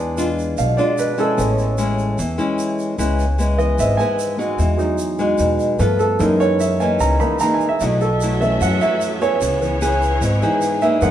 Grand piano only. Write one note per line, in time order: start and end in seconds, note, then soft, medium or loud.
0.00 0.35 G#3 soft
0.00 0.35 D4 soft
0.58 0.77 F5 medium
0.77 0.97 D5 medium
0.99 1.18 B4 medium
1.19 1.56 A4 medium
1.37 1.64 G#3 soft
1.37 1.65 B3 soft
1.37 1.65 C#4 soft
2.99 3.55 B4 medium
3.58 4.55 E3 soft
3.58 4.55 B3 soft
3.58 3.78 D#5 medium
3.80 3.99 E5 medium
3.97 4.10 G#5 medium
4.77 5.75 F#3 soft
4.77 5.75 G#3 soft
4.77 5.75 D#4 soft
5.79 6.17 F3 soft
5.79 6.17 A3 soft
5.79 6.18 B3 medium
5.79 6.00 B4 medium
5.99 6.19 A4 medium
6.19 6.77 E3 soft
6.19 6.77 G#3 soft
6.19 6.77 A#3 soft
6.19 6.77 D#4 soft
6.19 6.40 A#4 medium
6.40 6.59 C#5 medium
6.60 6.80 E5 medium
6.80 7.00 G#5 medium
7.01 7.20 A#5 medium
7.20 7.38 E3 soft
7.20 7.38 G#3 soft
7.20 7.38 A#3 soft
7.20 7.38 D#4 soft
7.20 7.40 B5 medium
7.41 7.53 A#5 medium
7.54 7.67 G#5 medium
7.69 7.81 E5 medium
7.82 8.01 D#5 medium
8.01 8.13 A4 medium
8.40 8.67 E3 soft
8.40 8.67 A3 soft
8.40 8.68 C#4 soft
8.40 8.60 E5 medium
8.62 8.81 F#5 medium
8.81 9.19 E5 medium
9.22 9.78 C#5 medium
9.61 10.18 E3 soft
9.61 10.18 B3 soft
9.82 10.01 B4 medium
10.41 10.60 E3 soft
10.41 10.60 B3 soft
10.41 10.60 D#4 soft
10.82 11.01 E5 medium
11.01 11.11 E3 soft
11.01 11.11 G#3 soft
11.01 11.11 A#3 soft
11.01 11.11 D#5 soft
11.01 11.11 F#5 medium